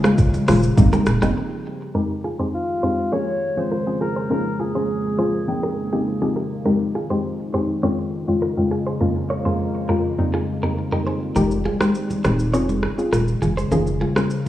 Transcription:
Already playing: ambient pad C#3 F3 G#4 A#4
0.04 synth pluck G#3 A#3 C#4 F4, clean electric guitar G#4 C5, cross-stick, high conga, shaker
0.18 kick, shaker
0.34 high conga, shaker
0.47 sub bass D#1, synth pluck G#3 A#3 C#4 F4, clean electric guitar G#4 C5, cross-stick, open hi-hat, low conga, shaker
0.63 shaker
0.77 sub bass F1, synth pluck G3 A#3 C4 D#4, ambient pad G3 C4 G4, kick, shaker
0.92 clean electric guitar G4 A#4, high conga, shaker
1.06 sub bass D#1, cross-stick, shaker
1.22 sub bass F1, synth pluck G3 A#3 C4 D#4, clean electric guitar D#4 G4, cross-stick, shaker
1.94 synth pluck F2 G#3 C4 D#4 G4, ambient pad F2 D#3 G#3 G4, clean electric guitar G4 A#4
2.25 clean electric guitar F4 G#4
2.39 synth pluck F2 G#3 C4 D#4 G4, clean electric guitar G#4 C5
2.55 alto saxophone F4
2.83 synth pluck F2 G#3 C4 D#4 G4, clean electric guitar G#4 C5
3.12 ambient pad C#3 A#3, synth pluck F3 A#3 C#4 F4 G#4, clean electric guitar A#4 C#5, alto saxophone C#5
3.57 synth pluck F3 C4 C#4 F4 G#4, alto saxophone C5
3.72 clean electric guitar F4 A#4
3.86 synth pluck F3 C4 C#4 F4 G#4
4.01 clean electric guitar F4 G#4, alto saxophone A#4
4.16 clean electric guitar G#4 C5
4.30 synth pluck F3 A#3 C#4 F4 G#4, clean electric guitar D#4 A#4, alto saxophone A#4
4.60 clean electric guitar F4 G#4, alto saxophone G#4
4.75 synth pluck F3 A#3 C#4 F4 G#4, clean electric guitar G#4 C5
5.18 synth pluck F3 A#3 C#4 F4 G#4, clean electric guitar G#4 C5
5.48 ambient pad D#3 C4, synth pluck F3 A#3 C4 D#4 G5
5.63 clean electric guitar G4 A#4
5.92 synth pluck F3 A#3 C4 D#4 G4, clean electric guitar D#4 G4
6.22 synth pluck F3 A#3 C4 D#4 G4, clean electric guitar F4 G#4
6.36 clean electric guitar G4 A#4
6.65 synth pluck F2 G#3 C4 D#4 G4, ambient pad G#3, clean electric guitar G4 A#4
6.95 clean electric guitar F4 G#4
7.10 synth pluck F2 G#3 C4 D#4 G4, clean electric guitar G#4 C5
7.53 synth pluck F2 G#3 C4 D#4 G4, clean electric guitar G#4 C5
7.83 synth pluck F2 G#3 C4 C#4 F4, ambient pad F2 C#3 G#3 A#3, clean electric guitar A#4 C#5
8.28 synth pluck F2 G#3 C4 C#4 F4
8.42 clean electric guitar F4 A#4
8.57 synth pluck F2 G#3 C4 C#4 F4
8.71 clean electric guitar F4 G#4
8.87 clean electric guitar G#4 C5
9.01 synth pluck F2 G#3 A#3 C#4 F4, clean electric guitar D#4 A#4
9.30 clean electric guitar A#4 C#5
9.45 synth pluck F2 G#3 A#3 C#4 F4, clean electric guitar G#4 C5
9.89 synth pluck F2 G#3 A#3 C#4 F4, clean electric guitar G4 A#4
10.18 synth pluck F2 G3 A#3 C4 D#4, ambient pad F2 D#3 G3 A#3 C4
10.34 clean electric guitar F4 G#4
10.63 synth pluck F2 G3 A#3 C4 D#4, clean electric guitar G4 A#4
10.92 synth pluck F2 G3 A#3 C4 D#4, clean electric guitar G4 A#4
11.07 clean electric guitar G#4 C5
11.36 sub bass F1, ambient pad F3 D#4 G4 G#4, synth pluck G#3 C4 D#4 G4, clean electric guitar G4 A#4, low conga, shaker
11.51 shaker
11.66 clean electric guitar F4 G#4, high conga
11.81 synth pluck G#3 C4 D#4 G4, clean electric guitar G#4 C5, cross-stick, high conga, shaker
11.95 shaker
12.10 high conga, shaker
12.24 sub bass D#1, synth pluck G#3 C4 D#4 G4, clean electric guitar G#4 C5, cross-stick, low conga, shaker
12.39 shaker
12.53 sub bass F1, ambient pad C#3 G#3 A#3, synth pluck C4 C#4 F4 G#4, clean electric guitar A#4 C#5, shaker
12.69 high conga, shaker
12.83 cross-stick
12.98 synth pluck C4 C#4 F4 G#4, shaker
13.12 sub bass D#1, clean electric guitar F4 A#4, cross-stick, high conga, shaker
13.28 shaker
13.42 sub bass F1, clean electric guitar F4 G#4, high conga, low conga, shaker
13.57 clean electric guitar G#4 C5, shaker
13.71 sub bass F1, ambient pad F3 G#4 A#4, synth pluck A#3 C#4 F4 G#4, clean electric guitar D#4 A#4, low conga, shaker
13.87 shaker
14.01 clean electric guitar F4 G#4, high conga
14.16 synth pluck A#3 C#4 F4 G#4, clean electric guitar G#4 C5, cross-stick, high conga, shaker
14.30 shaker

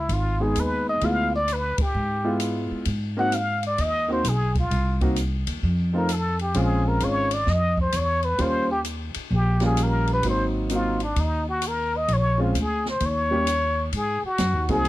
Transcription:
Already playing: muted trumpet E4
0.09 upright bass G#1, kick, ride
0.13 muted trumpet F4
0.40 upright piano G#3 B3 D#4 G#4, muted trumpet G#4
0.56 upright bass D#2, hi-hat pedal, ride
0.60 muted trumpet B4
0.89 muted trumpet D#5
1.01 upright bass D2, upright piano G#3 B3 E4 F4, muted trumpet F5, kick, ride
1.36 muted trumpet D5
1.48 hi-hat pedal, ride
1.53 muted trumpet B4
1.78 muted trumpet G4, muted upright bass stroke, kick, ride
1.95 upright bass G#2
2.24 upright piano G#3 B3 E4 F4
2.40 hi-hat pedal, ride
2.71 muted upright bass stroke
2.85 upright bass G#2, kick, ride
3.17 upright piano A#3 C4 D#4 F#4, muted trumpet F#5
3.32 muted trumpet F5, hi-hat pedal, ride
3.63 muted trumpet D5, ride
3.78 upright bass D#2, muted trumpet D#5, kick, ride
4.08 upright piano A#3 C4 D#4 F#4
4.12 muted trumpet C5
4.24 upright bass B1, hi-hat pedal, ride
4.29 muted trumpet G#4
4.55 kick, ride
4.59 muted trumpet F4
4.71 upright bass C2, kick, ride
5.01 upright piano A#3 C4 D#4 F#4, kick, ride
5.16 hi-hat pedal, ride
5.47 upright bass D#2, ride
5.63 upright bass F2, kick
5.93 upright piano A3 C4 D#4 F4
5.97 muted trumpet A#4
6.09 muted trumpet A4, hi-hat pedal, ride
6.39 muted trumpet G4, ride
6.54 upright bass A#1, upright piano G#3 C4 C#4 F4, kick, ride
6.58 muted trumpet G#4
6.88 muted trumpet A#4
7.00 upright bass G#1, upright piano G#3 C4 C#4 F4, muted trumpet C#5, hi-hat pedal, ride
7.31 muted trumpet D5, ride
7.47 upright bass F2, muted trumpet D#5, kick, snare
7.77 muted trumpet C5, kick
7.92 upright bass E2, hi-hat pedal, ride
7.97 muted trumpet C#5
8.23 muted trumpet B4, ride
8.38 upright bass D#2, upright piano G3 A#3 C#4 F4, muted trumpet C5, kick, ride
8.71 muted trumpet G4
8.85 hi-hat pedal, ride
9.14 muted upright bass stroke, ride
9.31 upright bass A#1, kick
9.35 muted trumpet G4
9.60 upright piano G3 A#3 C#4 F4, snare, ride
9.66 muted trumpet G#4
9.77 hi-hat pedal, ride
9.83 muted trumpet A#4
10.07 ride
10.13 muted trumpet B4
10.23 upright bass G#1, upright piano F#3 A#3 C4 D#4, kick, ride
10.30 muted trumpet C5
10.70 upright piano F#3 A#3 C4 D#4, hi-hat pedal, ride
10.75 muted trumpet F4
11.00 muted trumpet D4, ride
11.16 upright bass D#2, kick, ride
11.20 muted trumpet D#4
11.49 muted trumpet F#4
11.62 hi-hat pedal, ride
11.68 muted trumpet A#4
11.97 muted trumpet D#5
12.08 upright bass A#1, kick, ride
12.13 muted trumpet C#5
12.38 upright piano G#3 C4 C#4 F4
12.43 muted trumpet F4
12.54 upright bass D2, hi-hat pedal, ride
12.61 muted trumpet G#4
12.86 muted trumpet C5, snare
13.00 upright bass D#2, kick, ride
13.06 muted trumpet C#5
13.31 upright piano G3 A#3 C#4 G4
13.47 hi-hat pedal, ride
13.92 upright bass G#2, kick, ride
13.97 muted trumpet G#4
14.23 muted trumpet F#4, muted upright bass stroke
14.38 upright bass F#2, kick, snare, hi-hat pedal, ride
14.53 upright bass D#2
14.69 upright bass C2, upright piano F#3 A#3 C4 D#4 G#4, muted trumpet G#4, kick, ride
14.84 upright bass D#2, kick, ride

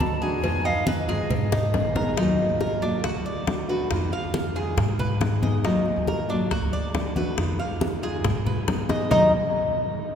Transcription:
Already playing: cuban tres A4, flute A5
0.00 upright bass D2, nylon-string guitar D3 A3 D4 F#4, cowbell, high conga
0.21 nylon-string guitar A3 D4 F#4, cuban tres G#4, flute G#5
0.43 upright bass F2, nylon-string guitar B2 D#3 G#3 D#4 F4, cowbell, high conga
0.64 nylon-string guitar G#3 D#4 F4, cuban tres D#5, flute F5, high conga
0.86 upright bass F2, cuban tres B4, flute D#5, cowbell, high conga
1.08 upright bass G2, nylon-string guitar D#3 G#3 D#4 F4, cuban tres G#4, flute D#5, cowbell
1.30 upright bass G#2, muted nylon-string guitar stroke, cowbell, high conga, low conga
1.52 cuban tres D#4, high bongo, high conga, low conga
1.73 upright bass A#1, nylon-string guitar G#3 B3 D#4 G#4, cowbell, low bongo, high conga
1.95 nylon-string guitar G#3 B3 D#4 G#4, cuban tres A#4, low bongo, high conga
2.17 upright bass D#2, nylon-string guitar D#3 F#3 A#3 F4, cuban tres D#4, high bongo, high conga
2.38 nylon-string guitar F#3 A#3 F4, high conga
2.49 upright bass D#2
2.61 cuban tres A#4, high bongo, high conga
2.82 nylon-string guitar F#3 A#3 F4, cuban tres D4, high conga
3.04 upright bass D2, cuban tres F#4, muted nylon-string guitar stroke, high bongo, high conga
3.15 upright bass D2
3.26 cuban tres D5, high conga
3.47 nylon-string guitar D3 A3 D4 F#4, high bongo, low bongo, high conga
3.69 nylon-string guitar A3 D4 F#4, cuban tres B4
3.91 upright bass F2, nylon-string guitar B2 D#3 G#3 D#4 F4, high bongo, high conga
4.12 nylon-string guitar G#3 D#4 F4, cuban tres F5, high bongo, high conga
4.23 upright bass F2
4.34 high bongo, high conga
4.55 nylon-string guitar D#3 G#3 D#4 F4, cuban tres G#4, high bongo
4.77 upright bass G#2, muted nylon-string guitar stroke, high bongo, high conga, low conga
4.88 upright bass G#2
4.99 cuban tres B4, high bongo, high conga, low conga
5.21 nylon-string guitar G#3 B3 D#4 G#4, high bongo, low bongo, high conga
5.42 nylon-string guitar G#3 B3 D#4 G#4, cuban tres D#5, high conga
5.64 upright bass D#2, nylon-string guitar D#3 F#3 A#3 F4, cuban tres D#4, high bongo, high conga
5.86 nylon-string guitar F#3 A#3 F4, high conga
5.96 upright bass D#2
6.07 cuban tres A#4, high bongo, high conga
6.29 nylon-string guitar F#3 A#3 F4, cuban tres D4, high conga
6.50 upright bass D2, cuban tres F#4, muted nylon-string guitar stroke, high bongo, high conga
6.61 upright bass D2
6.73 cuban tres D5, high conga
6.94 nylon-string guitar D3 A3 D4 F#4, high bongo, low bongo, high conga
7.16 nylon-string guitar A3 D4 F#4, cuban tres B4, high conga
7.37 upright bass F2, nylon-string guitar B2 D#3 G#3 D#4 F4, high bongo, high conga
7.59 nylon-string guitar G#3 D#4 F4, cuban tres F5, high bongo, high conga
7.70 upright bass F2
7.81 high bongo, high conga
8.03 nylon-string guitar D#3 G#3 D#4 F4, cuban tres G#4, high bongo
8.24 upright bass G#2, muted nylon-string guitar stroke, high bongo, high conga, low conga
8.35 upright bass G#2
8.46 cuban tres B4, high bongo, high conga, low conga
8.67 nylon-string guitar G#3 B3 D#4 G#4, high bongo, low bongo, high conga
8.89 nylon-string guitar G#3 B3 D#4 G#4, cuban tres D#5, high bongo, high conga
9.11 upright bass D#2, nylon-string guitar D#3 F#3 A#3 F4, cuban tres D#4 A#4 D#5, low bongo, low conga

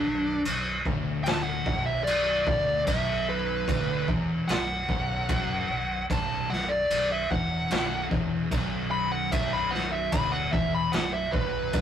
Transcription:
Already playing: lead electric guitar D4
0.06 fingered electric bass B0, distorted electric guitar B1
0.45 fingered electric bass B0, distorted electric guitar B1, crash
0.86 fingered electric bass D1, distorted electric guitar D2, kick
1.24 lead electric guitar A5, snare, crash
1.43 lead electric guitar F#5
1.65 fingered electric bass B0, distorted electric guitar B1, kick
1.86 lead electric guitar E5
2.04 lead electric guitar D5, crash
2.47 fingered electric bass D1, distorted electric guitar D2, kick
2.87 fingered electric bass B0, distorted electric guitar B1, lead electric guitar E5, kick, crash
3.29 lead electric guitar B4
3.68 fingered electric bass D1, distorted electric guitar D2, kick, crash
4.08 fingered electric bass E1, distorted electric guitar E2, kick
4.48 fingered electric bass B0, distorted electric guitar B1, lead electric guitar F#5, snare, crash
4.88 fingered electric bass B0, distorted electric guitar B1, kick
5.29 fingered electric bass F#1, distorted electric guitar F#2, kick, crash
5.69 fingered electric bass B0, distorted electric guitar B1
6.10 fingered electric bass B0, distorted electric guitar B1, lead electric guitar A5, kick, crash
6.49 fingered electric bass B0, distorted electric guitar B1, lead electric guitar F#5, snare
6.69 lead electric guitar D5
6.90 fingered electric bass B0, distorted electric guitar B1, crash
7.12 lead electric guitar E5
7.31 fingered electric bass E1, distorted electric guitar E2, lead electric guitar F#5, kick
7.71 fingered electric bass B0, distorted electric guitar B1, snare, crash
8.11 fingered electric bass E1, distorted electric guitar E2, kick
8.51 fingered electric bass B0, distorted electric guitar B1, kick, crash
8.91 lead electric guitar B5
9.12 lead electric guitar F#5
9.32 fingered electric bass B0, distorted electric guitar B1, lead electric guitar E5, kick, crash
9.53 lead electric guitar B5
9.71 lead electric guitar F#5, snare
9.93 lead electric guitar E5
10.12 fingered electric bass D1, distorted electric guitar D2, lead electric guitar B5, kick, crash
10.32 lead electric guitar F#5
10.52 fingered electric bass E1, distorted electric guitar E2, lead electric guitar E5, kick
10.75 lead electric guitar B5
10.92 fingered electric bass B0, distorted electric guitar B1, lead electric guitar F#5, snare, crash
11.13 lead electric guitar E5
11.32 fingered electric bass B0, distorted electric guitar B1, lead electric guitar B4, kick
11.73 fingered electric bass F#1, distorted electric guitar F#2, kick, crash

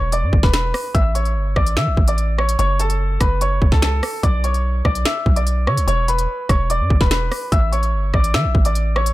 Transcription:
Already playing: 808-style bass E1, grand piano C#5 C#6
0.12 grand piano D5 D6, closed hi-hat
0.23 808-style bass G2
0.33 808-style bass G1, kick
0.43 808-style bass E1, grand piano B4 B5, kick, snare
0.53 grand piano B4 B5, finger snap, snare, closed hi-hat
0.74 cross-stick, open hi-hat
0.95 808-style bass A1, grand piano E5 E6, kick, closed hi-hat
1.15 grand piano C#5 C#6, closed hi-hat
1.25 closed hi-hat
1.36 808-style bass G1
1.56 808-style bass A1, grand piano D5 D6, kick, cross-stick
1.67 closed hi-hat
1.77 808-style bass E3, grand piano E5 E6, finger snap, snare
1.87 808-style bass A1
1.97 808-style bass A1, kick
2.08 grand piano D5 D6, closed hi-hat
2.18 closed hi-hat
2.38 grand piano C#5 C#6, cross-stick
2.49 closed hi-hat
2.59 808-style bass F#1, grand piano C#5 C#6, closed hi-hat
2.79 grand piano A4 A5, closed hi-hat
2.90 closed hi-hat
3.21 808-style bass F#1, grand piano B4 B5, kick, cross-stick, closed hi-hat
3.41 grand piano C#5 C#6, closed hi-hat
3.62 808-style bass F#1, kick
3.72 808-style bass C#2, grand piano A4 A5, kick, snare
3.82 grand piano A4 A5, finger snap, snare, closed hi-hat
4.03 cross-stick, open hi-hat
4.23 808-style bass B1, grand piano D5 D6, kick, closed hi-hat
4.44 grand piano C#5 C#6, closed hi-hat
4.54 closed hi-hat
4.85 808-style bass B1, grand piano D5 D6, kick, cross-stick
4.95 closed hi-hat
5.05 grand piano E5 E6, finger snap, snare
5.26 808-style bass B1, kick
5.36 grand piano D5 D6, closed hi-hat
5.47 closed hi-hat
5.67 808-style bass D3, grand piano C#5 C#6, cross-stick
5.77 808-style bass B1, closed hi-hat
5.87 808-style bass E1, grand piano C#5 C#6, closed hi-hat
6.08 grand piano B4 B5, closed hi-hat
6.19 closed hi-hat
6.49 808-style bass E1, grand piano C#5 C#6, kick, cross-stick, closed hi-hat
6.70 grand piano D5 D6, closed hi-hat
6.80 808-style bass G2
6.90 808-style bass G1, kick
7.01 808-style bass E1, grand piano B4 B5, kick, snare
7.11 grand piano B4 B5, finger snap, snare, closed hi-hat
7.32 cross-stick, open hi-hat
7.52 808-style bass A1, grand piano E5 E6, kick, closed hi-hat
7.72 grand piano C#5 C#6, closed hi-hat
7.83 closed hi-hat
7.93 808-style bass G1
8.14 808-style bass A1, grand piano D5 D6, kick, cross-stick
8.24 closed hi-hat
8.34 808-style bass E3, grand piano E5 E6, finger snap, snare
8.45 808-style bass A1
8.55 808-style bass A1, kick
8.65 grand piano D5 D6, closed hi-hat
8.75 closed hi-hat
8.96 grand piano C#5 C#6, cross-stick
9.06 closed hi-hat

